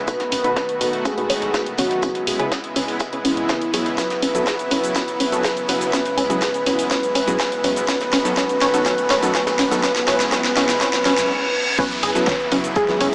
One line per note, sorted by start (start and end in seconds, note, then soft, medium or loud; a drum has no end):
0.00 9.79 B3 medium
0.08 0.42 B2 medium
0.08 2.01 D#3 medium
0.08 2.01 A3 medium
0.08 0.42 B3 medium
0.08 0.42 D#4 medium
0.08 2.01 F#4 medium
0.08 0.42 F#4 medium
0.08 0.42 A4 medium
0.08 0.96 B4 loud
0.08 0.42 B4 medium
0.08 kick loud
0.08 closed hi-hat medium
0.08 shaker medium
0.20 snare medium
0.20 closed hi-hat soft
0.32 0.50 B1 loud
0.32 0.39 C#4 medium
0.32 open hi-hat loud
0.32 shaker medium
0.44 0.52 B2 loud
0.44 0.52 B3 medium
0.44 0.52 D#4 medium
0.44 0.52 F#4 medium
0.44 0.52 A4 medium
0.44 0.52 B4 loud
0.44 closed hi-hat soft
0.56 0.61 C#4 loud
0.56 kick loud
0.56 snare loud
0.56 closed hi-hat medium
0.56 shaker medium
0.69 closed hi-hat soft
0.81 0.99 B1 medium
0.81 1.15 B2 medium
0.81 1.15 B3 medium
0.81 1.15 D#4 medium
0.81 1.15 F#4 medium
0.81 0.88 G#4 medium
0.81 1.15 A4 medium
0.81 1.15 B4 medium
0.81 open hi-hat loud
0.81 shaker medium
0.93 closed hi-hat soft
1.05 1.13 C#4 medium
1.05 1.69 G#4 loud
1.05 kick loud
1.05 closed hi-hat medium
1.05 shaker medium
1.18 1.30 B2 medium
1.18 1.30 B3 medium
1.18 1.30 D#4 medium
1.18 1.30 F#4 medium
1.18 1.30 A4 medium
1.18 1.30 B4 medium
1.18 closed hi-hat soft
1.30 1.39 A1 medium
1.30 1.35 C#4 loud
1.30 open hi-hat loud
1.30 shaker medium
1.42 1.60 B1 medium
1.42 snare soft
1.42 closed hi-hat soft
1.54 1.76 B2 medium
1.54 1.76 B3 medium
1.54 1.76 D#4 medium
1.54 1.76 F#4 medium
1.54 1.61 G#4 medium
1.54 1.76 A4 medium
1.54 1.76 B4 loud
1.54 kick loud
1.54 snare loud
1.54 closed hi-hat medium
1.54 shaker medium
1.66 closed hi-hat soft
1.78 1.96 B1 loud
1.78 1.86 C#3 medium
1.78 1.86 B3 medium
1.78 1.86 C#4 medium
1.78 1.86 D#4 medium
1.78 1.86 F#4 medium
1.78 2.42 F#4 loud
1.78 1.86 A4 medium
1.78 1.86 C#5 loud
1.78 snare soft
1.78 open hi-hat loud
1.78 shaker medium
1.91 snare soft
1.91 closed hi-hat soft
2.02 7.84 C#3 medium
2.02 2.37 C#3 medium
2.02 3.96 G#3 medium
2.02 2.37 B3 medium
2.02 2.08 C#4 loud
2.02 2.37 C#4 medium
2.02 7.84 E4 medium
2.02 2.37 E4 medium
2.02 2.37 G#4 medium
2.02 2.37 B4 medium
2.02 kick loud
2.02 closed hi-hat medium
2.02 shaker medium
2.15 snare soft
2.15 closed hi-hat soft
2.27 2.45 C#2 loud
2.27 2.35 G#4 medium
2.27 open hi-hat loud
2.27 shaker medium
2.39 2.47 C#3 loud
2.39 2.47 B3 medium
2.39 2.47 C#4 medium
2.39 2.47 E4 medium
2.39 2.47 G#4 medium
2.39 2.47 B4 loud
2.39 closed hi-hat soft
2.52 2.59 C#4 medium
2.52 kick loud
2.52 snare loud
2.52 closed hi-hat medium
2.52 shaker medium
2.64 closed hi-hat soft
2.76 2.94 C#2 medium
2.76 3.10 C#3 medium
2.76 3.10 B3 medium
2.76 2.81 C#4 loud
2.76 3.10 C#4 medium
2.76 3.10 E4 medium
2.76 3.10 G#4 medium
2.76 3.10 B4 loud
2.76 open hi-hat loud
2.76 shaker medium
2.88 open hi-hat medium
3.00 3.08 G#4 medium
3.00 kick loud
3.00 closed hi-hat medium
3.00 shaker medium
3.13 3.25 C#3 medium
3.13 3.25 B3 medium
3.13 3.25 C#4 medium
3.13 3.25 E4 medium
3.13 3.25 G#4 medium
3.13 3.25 B4 medium
3.13 closed hi-hat soft
3.25 3.34 C#2 medium
3.25 3.32 C#4 medium
3.25 3.88 E4 loud
3.25 open hi-hat loud
3.25 shaker medium
3.37 3.55 C#2 loud
3.37 closed hi-hat soft
3.49 3.71 C#3 medium
3.49 3.71 B3 medium
3.49 3.54 C#4 loud
3.49 3.71 C#4 medium
3.49 3.71 E4 medium
3.49 3.71 G#4 medium
3.49 3.71 B4 loud
3.49 kick loud
3.49 snare loud
3.49 closed hi-hat medium
3.49 shaker medium
3.62 closed hi-hat soft
3.74 3.91 G#1 medium
3.74 3.81 F#3 medium
3.74 3.81 B3 medium
3.74 3.81 C#4 medium
3.74 3.81 E4 medium
3.74 3.81 G#4 medium
3.74 3.81 C#5 loud
3.74 open hi-hat loud
3.74 shaker medium
3.86 snare medium
3.86 closed hi-hat soft
3.98 5.91 F#3 medium
3.98 4.32 F#3 medium
3.98 4.32 B3 medium
3.98 4.32 C#4 medium
3.98 4.05 C#4 medium
3.98 4.32 E4 medium
3.98 4.32 F#4 medium
3.98 4.32 B4 medium
3.98 4.94 B4 loud
3.98 kick loud
3.98 snare soft
3.98 closed hi-hat medium
3.98 riser medium
3.98 cabasa medium
3.98 shaker medium
4.10 snare medium
4.10 closed hi-hat soft
4.10 cabasa soft
4.22 4.40 F#1 loud
4.22 4.27 C#4 loud
4.22 open hi-hat loud
4.22 shaker medium
4.35 4.42 F#3 medium
4.35 4.42 B3 medium
4.35 4.42 C#4 medium
4.35 4.42 E4 medium
4.35 4.42 F#4 medium
4.35 4.42 A4 loud
4.35 closed hi-hat soft
4.35 cabasa medium
4.46 4.54 G#4 medium
4.46 kick loud
4.46 snare medium
4.46 snare loud
4.46 closed hi-hat medium
4.46 cabasa medium
4.46 shaker medium
4.59 closed hi-hat soft
4.59 cabasa soft
4.71 4.89 F#1 medium
4.71 4.94 F#3 medium
4.71 4.94 B3 medium
4.71 4.79 C#4 medium
4.71 4.94 C#4 medium
4.71 4.94 E4 medium
4.71 4.94 F#4 medium
4.71 4.94 B4 medium
4.71 open hi-hat loud
4.71 shaker medium
4.84 closed hi-hat soft
4.84 cabasa medium
4.95 5.29 F#3 medium
4.95 5.29 B3 medium
4.95 5.03 C#4 medium
4.95 5.29 C#4 medium
4.95 5.29 E4 medium
4.95 5.29 F#4 medium
4.95 5.91 B4 loud
4.95 5.29 B4 medium
4.95 kick loud
4.95 snare medium
4.95 closed hi-hat medium
4.95 cabasa medium
4.95 shaker medium
5.08 closed hi-hat soft
5.08 cabasa soft
5.20 5.29 E1 medium
5.20 5.25 C#4 medium
5.20 open hi-hat loud
5.20 shaker medium
5.32 5.50 F#1 medium
5.32 5.40 F#3 medium
5.32 5.40 B3 medium
5.32 5.40 C#4 medium
5.32 5.40 E4 medium
5.32 5.40 F#4 medium
5.32 5.40 A4 loud
5.32 snare soft
5.32 closed hi-hat soft
5.32 cabasa medium
5.44 5.52 G#4 medium
5.44 kick loud
5.44 snare medium
5.44 snare loud
5.44 closed hi-hat medium
5.44 cabasa medium
5.44 shaker medium
5.57 closed hi-hat soft
5.57 cabasa soft
5.69 5.87 F#1 loud
5.69 5.91 F#3 medium
5.69 5.91 B3 medium
5.69 5.76 C#4 medium
5.69 5.91 C#4 medium
5.69 5.91 E4 medium
5.69 5.91 F#4 medium
5.69 5.91 B4 medium
5.69 snare soft
5.69 open hi-hat loud
5.69 shaker medium
5.81 snare soft
5.81 closed hi-hat soft
5.81 cabasa medium
5.93 6.27 F#3 medium
5.93 7.86 G#3 medium
5.93 6.27 B3 medium
5.93 6.00 C#4 medium
5.93 6.27 C#4 medium
5.93 6.27 E4 medium
5.93 6.27 F#4 medium
5.93 6.89 B4 loud
5.93 6.27 B4 medium
5.93 kick loud
5.93 snare medium
5.93 closed hi-hat medium
5.93 cabasa medium
5.93 shaker loud
6.06 snare soft
6.06 closed hi-hat soft
6.06 cabasa soft
6.17 6.35 C#2 loud
6.17 6.22 C#4 medium
6.17 open hi-hat loud
6.17 shaker medium
6.30 6.37 F#3 loud
6.30 6.37 B3 medium
6.30 6.37 C#4 medium
6.30 6.37 E4 medium
6.30 6.37 F#4 medium
6.30 6.37 G#4 loud
6.30 closed hi-hat soft
6.30 cabasa medium
6.41 6.49 G#4 medium
6.41 kick loud
6.41 snare medium
6.41 snare loud
6.41 closed hi-hat medium
6.41 cabasa medium
6.41 shaker medium
6.54 closed hi-hat soft
6.54 cabasa soft
6.66 6.84 C#2 medium
6.66 6.89 F#3 medium
6.66 6.89 B3 medium
6.66 6.74 C#4 medium
6.66 6.89 C#4 medium
6.66 6.89 E4 medium
6.66 6.89 F#4 medium
6.66 6.89 B4 medium
6.66 open hi-hat loud
6.66 shaker medium
6.79 open hi-hat medium
6.79 cabasa medium
6.91 7.25 F#3 medium
6.91 7.25 B3 medium
6.91 7.25 C#4 medium
6.91 6.98 C#4 medium
6.91 7.25 E4 medium
6.91 7.25 F#4 medium
6.91 7.25 B4 medium
6.91 7.86 B4 loud
6.91 kick loud
6.91 snare medium
6.91 closed hi-hat medium
6.91 cabasa medium
6.91 shaker medium
7.03 closed hi-hat soft
7.03 cabasa soft
7.15 7.24 B1 medium
7.15 7.20 C#4 loud
7.15 open hi-hat loud
7.15 shaker medium
7.27 7.45 C#2 medium
7.27 7.35 F#3 loud
7.27 7.35 B3 medium
7.27 7.35 C#4 medium
7.27 7.35 E4 medium
7.27 7.35 F#4 medium
7.27 7.35 G#4 loud
7.27 closed hi-hat soft
7.27 cabasa medium
7.40 7.47 G#4 medium
7.40 kick loud
7.40 snare medium
7.40 snare loud
7.40 closed hi-hat medium
7.40 cabasa medium
7.40 shaker medium
7.52 closed hi-hat soft
7.52 cabasa soft
7.64 7.82 C#2 loud
7.64 7.86 F#3 medium
7.64 7.86 B3 medium
7.64 7.86 C#4 medium
7.64 7.71 C#4 medium
7.64 7.86 E4 medium
7.64 7.86 F#4 medium
7.64 7.86 B4 loud
7.64 open hi-hat loud
7.64 shaker medium
7.76 snare medium
7.76 closed hi-hat soft
7.76 cabasa medium
7.88 9.81 D#3 medium
7.88 8.22 F#3 medium
7.88 9.82 A3 medium
7.88 8.22 B3 medium
7.88 8.22 C#4 medium
7.88 7.96 C#4 medium
7.88 8.22 D#4 medium
7.88 9.81 F#4 medium
7.88 8.22 F#4 medium
7.88 8.35 B4 loud
7.88 8.22 B4 medium
7.88 kick loud
7.88 snare medium
7.88 closed hi-hat medium
7.88 cabasa medium
7.88 shaker medium
8.01 snare medium
8.01 closed hi-hat soft
8.01 cabasa soft
8.13 8.30 B1 loud
8.13 8.18 C#4 loud
8.13 snare medium
8.13 open hi-hat loud
8.13 shaker medium
8.25 8.33 F#3 loud
8.25 8.33 B3 medium
8.25 8.33 C#4 medium
8.25 8.33 D#4 medium
8.25 8.33 F#4 medium
8.25 8.33 A4 loud
8.25 closed hi-hat soft
8.25 cabasa medium
8.37 8.71 F#3 medium
8.37 8.71 B3 medium
8.37 8.71 C#4 medium
8.37 8.44 C#4 medium
8.37 8.71 D#4 medium
8.37 8.71 F#4 medium
8.37 8.84 B4 loud
8.37 8.71 B4 medium
8.37 kick loud
8.37 snare medium
8.37 snare loud
8.37 closed hi-hat medium
8.37 cabasa medium
8.37 shaker medium
8.49 closed hi-hat soft
8.49 cabasa soft
8.61 8.79 B1 medium
8.61 8.66 C#4 loud
8.61 snare medium
8.61 open hi-hat loud
8.61 shaker medium
8.74 8.81 F#3 medium
8.74 8.81 B3 medium
8.74 8.81 C#4 medium
8.74 8.81 D#4 medium
8.74 8.81 F#4 medium
8.74 8.81 A4 loud
8.74 closed hi-hat soft
8.74 cabasa medium
8.85 9.20 F#3 medium
8.85 9.20 B3 medium
8.85 9.20 C#4 medium
8.85 8.93 C#4 medium
8.85 9.20 D#4 medium
8.85 9.20 F#4 medium
8.85 9.33 B4 loud
8.85 9.20 B4 medium
8.85 kick loud
8.85 snare medium
8.85 closed hi-hat medium
8.85 cabasa medium
8.85 shaker medium
8.98 closed hi-hat soft
8.98 cabasa soft
9.10 9.19 A1 medium
9.10 9.15 C#4 loud
9.10 snare loud
9.10 snare medium
9.10 open hi-hat loud
9.10 shaker medium
9.23 9.40 B1 medium
9.23 9.30 F#3 loud
9.23 9.30 B3 medium
9.23 9.30 C#4 medium
9.23 9.30 D#4 medium
9.23 9.30 F#4 medium
9.23 9.30 A4 loud
9.23 closed hi-hat soft
9.23 cabasa medium
9.35 9.68 F#3 medium
9.35 9.68 B3 medium
9.35 9.68 C#4 medium
9.35 9.42 C#4 medium
9.35 9.68 D#4 medium
9.35 9.68 F#4 medium
9.35 9.81 B4 loud
9.35 9.68 B4 medium
9.35 kick loud
9.35 snare medium
9.35 snare soft
9.35 closed hi-hat medium
9.35 cabasa medium
9.35 shaker medium
9.47 snare loud
9.47 closed hi-hat soft
9.47 cabasa soft
9.47 shaker medium
9.59 9.77 B1 loud
9.59 9.64 C#4 loud
9.59 snare medium
9.59 open hi-hat loud
9.71 9.79 F#3 loud
9.71 9.79 B3 medium
9.71 9.79 C#4 medium
9.71 9.79 D#4 medium
9.71 9.79 F#4 medium
9.71 9.79 A4 loud
9.71 snare soft
9.71 closed hi-hat soft
9.71 cabasa medium
9.71 shaker medium
9.83 11.28 C#3 medium
9.83 10.06 F#3 medium
9.83 11.28 G#3 medium
9.83 11.28 B3 medium
9.83 10.06 B3 medium
9.83 9.91 C#4 medium
9.83 10.06 C#4 medium
9.83 11.28 E4 medium
9.83 10.06 E4 medium
9.83 10.06 F#4 medium
9.83 10.06 B4 loud
9.83 10.06 B4 medium
9.83 kick loud
9.83 snare medium
9.83 closed hi-hat medium
9.83 cabasa medium
9.83 shaker medium
9.96 snare medium
9.96 snare soft
9.96 closed hi-hat soft
9.96 cabasa soft
10.07 10.25 C#2 loud
10.07 10.30 F#3 medium
10.07 10.30 B3 medium
10.07 10.15 C#4 medium
10.07 10.30 C#4 medium
10.07 10.30 E4 medium
10.07 10.30 F#4 medium
10.07 10.30 B4 loud
10.07 10.30 B4 medium
10.07 snare loud
10.07 snare medium
10.07 open hi-hat loud
10.07 shaker medium
10.20 snare medium
10.20 snare loud
10.20 closed hi-hat soft
10.20 cabasa medium
10.20 shaker medium
10.32 10.55 F#3 medium
10.32 10.55 B3 medium
10.32 10.40 C#4 medium
10.32 10.55 C#4 medium
10.32 10.55 E4 medium
10.32 10.55 F#4 medium
10.32 10.55 B4 loud
10.32 10.55 B4 medium
10.32 kick loud
10.32 snare loud
10.32 closed hi-hat medium
10.32 cabasa medium
10.32 shaker medium
10.44 snare medium
10.44 closed hi-hat soft
10.44 cabasa soft
10.44 shaker medium
10.57 10.74 C#2 medium
10.57 10.79 F#3 medium
10.57 10.79 B3 medium
10.57 10.64 C#4 medium
10.57 10.79 C#4 medium
10.57 10.79 E4 medium
10.57 10.79 F#4 medium
10.57 10.79 B4 loud
10.57 10.79 B4 medium
10.57 snare loud
10.57 open hi-hat loud
10.57 shaker medium
10.69 snare medium
10.69 snare loud
10.69 open hi-hat medium
10.69 cabasa medium
10.69 shaker medium
10.81 11.04 F#3 medium
10.81 11.04 B3 medium
10.81 11.04 C#4 medium
10.81 10.88 C#4 medium
10.81 11.04 E4 medium
10.81 11.04 F#4 medium
10.81 11.03 B4 loud
10.81 11.04 B4 medium
10.81 kick loud
10.81 snare loud
10.81 closed hi-hat medium
10.81 reverse cymbal medium
10.81 cabasa medium
10.81 shaker medium
10.93 snare medium
10.93 closed hi-hat soft
10.93 cabasa soft
11.05 11.14 B1 medium
11.05 11.28 F#3 medium
11.05 11.28 B3 medium
11.05 11.13 C#4 medium
11.05 11.28 C#4 medium
11.05 11.28 E4 medium
11.05 11.28 F#4 medium
11.05 11.28 B4 loud
11.05 snare loud
11.05 open hi-hat loud
11.05 shaker medium
11.18 11.30 C#2 medium
11.18 snare medium
11.18 closed hi-hat soft
11.18 cabasa medium
11.79 13.15 C#3 medium
11.79 13.15 F#3 medium
11.79 12.12 F#3 medium
11.79 13.15 B3 medium
11.79 12.12 B3 medium
11.79 11.84 C#4 loud
11.79 12.12 C#4 medium
11.79 13.15 E4 medium
11.79 12.12 E4 medium
11.79 12.12 F#4 medium
11.79 12.66 B4 loud
11.79 12.67 B4 loud
11.79 12.12 B4 medium
11.79 kick loud
11.79 closed hi-hat medium
11.79 crash loud
11.79 downlifter medium
11.79 cabasa medium
11.79 shaker medium
11.91 snare medium
11.91 closed hi-hat soft
11.91 cabasa soft
12.03 12.21 F#1 loud
12.03 12.10 G#4 medium
12.03 open hi-hat loud
12.03 shaker medium
12.15 12.23 F#3 loud
12.15 12.23 B3 medium
12.15 12.23 C#4 medium
12.15 12.23 E4 medium
12.15 12.23 F#4 medium
12.15 12.23 A4 loud
12.15 closed hi-hat soft
12.15 cabasa medium
12.27 12.35 C#4 medium
12.27 kick loud
12.27 snare loud
12.27 closed hi-hat medium
12.27 cabasa medium
12.27 shaker medium
12.40 closed hi-hat soft
12.40 cabasa soft
12.52 12.69 F#1 medium
12.52 12.86 F#3 medium
12.52 12.86 B3 medium
12.52 12.86 C#4 medium
12.52 12.57 C#4 loud
12.52 12.86 E4 medium
12.52 12.86 F#4 medium
12.52 12.86 B4 loud
12.52 open hi-hat loud
12.52 shaker medium
12.64 closed hi-hat soft
12.64 cabasa medium
12.76 13.15 G#4 loud
12.76 12.84 G#4 medium
12.76 13.15 G#4 loud
12.76 kick loud
12.76 closed hi-hat medium
12.76 cabasa medium
12.76 shaker medium
12.88 13.01 F#3 medium
12.88 13.01 B3 medium
12.88 13.01 C#4 medium
12.88 13.01 E4 medium
12.88 13.01 F#4 medium
12.88 13.01 B4 medium
12.88 snare soft
12.88 closed hi-hat soft
12.88 cabasa soft
13.00 13.09 F#1 medium
13.00 13.08 C#4 medium
13.00 open hi-hat loud
13.00 shaker medium